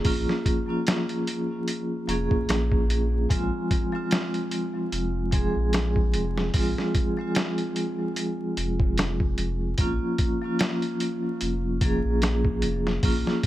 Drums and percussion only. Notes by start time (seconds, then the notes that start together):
0.05 kick, open hi-hat
0.29 snare
0.46 kick, closed hi-hat
0.87 snare, closed hi-hat
1.09 closed hi-hat
1.27 closed hi-hat
1.68 closed hi-hat
2.09 closed hi-hat
2.31 kick
2.49 snare, closed hi-hat
2.72 kick
2.90 closed hi-hat
3.30 kick, closed hi-hat
3.71 kick, closed hi-hat
4.11 snare, closed hi-hat
4.34 closed hi-hat
4.51 closed hi-hat
4.92 closed hi-hat
5.32 kick, closed hi-hat
5.73 snare, closed hi-hat
5.96 kick
6.14 closed hi-hat
6.38 snare
6.54 kick, open hi-hat
6.78 snare
6.95 kick, closed hi-hat
7.35 snare, closed hi-hat
7.58 closed hi-hat
7.76 closed hi-hat
8.16 closed hi-hat
8.57 closed hi-hat
8.80 kick
8.98 snare, closed hi-hat
9.20 kick
9.38 closed hi-hat
9.78 kick, closed hi-hat
10.18 kick, closed hi-hat
10.59 snare, closed hi-hat
10.82 closed hi-hat
11.00 closed hi-hat
11.41 closed hi-hat
11.81 kick, closed hi-hat
12.22 snare, closed hi-hat
12.45 kick
12.62 closed hi-hat
12.87 snare
13.03 kick, open hi-hat
13.27 snare
13.43 kick, closed hi-hat